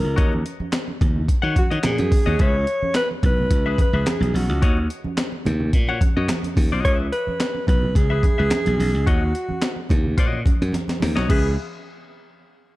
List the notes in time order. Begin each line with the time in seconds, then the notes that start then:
Already playing: A#4
0.04 C#2
0.16 D#2 F#4 C#5 D#5, kick, closed hi-hat, muted conga
0.33 muted conga, high conga
0.46 closed hi-hat
0.60 muted slap bass stroke, high conga
0.73 snare, clap, closed hi-hat, muted conga
0.88 muted conga
1.01 D#2, kick, closed hi-hat, low conga
1.16 low conga
1.28 kick, closed hi-hat, muted conga
1.42 D#3 F#4 C#5 F#5, muted conga
1.56 F#4, kick, closed hi-hat, high conga
1.71 D#3 F#4 C#5 D#5, closed hi-hat
1.83 A#2 G#4, snare, clap, closed hi-hat, muted conga, high conga
1.98 F#2, closed hi-hat, muted conga, high conga
2.12 kick, open hi-hat, high conga
2.26 D#2 F#4 C#5 D#5
2.39 C#2 G#4 B4 C#5 E5, kick, closed hi-hat, muted conga
2.67 closed hi-hat
2.82 muted slap bass stroke, high conga
2.95 B4, snare, clap, closed hi-hat
3.11 muted conga
3.23 B1 B4, kick, closed hi-hat, low conga
3.38 low conga
3.51 C#2, kick, closed hi-hat, muted conga
3.66 G#4 B4 E5, muted conga
3.78 B4, kick, closed hi-hat, high conga
3.93 C#2 G#4 B4 E5
4.06 G#4, snare, clap, closed hi-hat, muted conga, high conga
4.20 B1, closed hi-hat, muted conga, high conga
4.34 B1 F#4, open hi-hat, high conga
4.49 C#2
4.62 D#2 F#4 C#5 D#5, kick, closed hi-hat
4.77 muted conga
4.90 closed hi-hat
5.04 muted slap bass stroke, high conga
5.18 snare, clap, closed hi-hat, muted conga
5.32 muted conga
5.45 D#2, closed hi-hat, low conga
5.60 low conga
5.73 A#2, kick, closed hi-hat, muted conga
5.88 F#4 C#5 F#5, muted conga
6.01 kick, closed hi-hat, high conga
6.17 F#2 F#4 C#5 D#5
6.28 snare, clap, closed hi-hat, high conga
6.43 closed hi-hat, muted conga, high conga
6.56 D#2, kick, open hi-hat, high conga
6.72 B1 F#4 C#5 D#5
6.85 C#2 G#4 B4 C#5 E5, kick, closed hi-hat, muted conga
6.99 muted conga
7.12 B4, closed hi-hat
7.27 muted slap bass stroke, high conga
7.40 snare, clap, closed hi-hat, muted conga
7.55 muted conga
7.67 B1 B4, kick, closed hi-hat, low conga
7.82 low conga
7.95 C#2 G#4, kick, closed hi-hat, muted conga
8.09 G#4 B4 E5, muted conga
8.23 kick, closed hi-hat, high conga
8.38 C#2 G#4 B4 E5
8.51 snare, clap, closed hi-hat, muted conga, high conga
8.65 B1, closed hi-hat, muted conga, high conga
8.78 B1, open hi-hat, high conga
8.95 C#2
9.07 D#2 F#4 C#5 D#5, kick, closed hi-hat
9.21 muted conga
9.35 closed hi-hat
9.49 muted slap bass stroke, high conga
9.62 snare, clap, closed hi-hat, muted conga
9.76 muted conga
9.89 D#2, kick, closed hi-hat, low conga
10.04 low conga
10.18 A#2 F#4 C#5 D#5, kick, closed hi-hat
10.32 muted conga
10.45 kick, closed hi-hat, high conga
10.62 F#2, closed hi-hat
10.73 snare, closed hi-hat, muted conga, high conga
10.88 snare, closed hi-hat, muted conga, high conga
11.00 D#2, snare, open hi-hat, high conga
11.16 B1 F#4 C#5 D#5, snare
11.28 C#2 G#4 B4 E5, kick, crash, high conga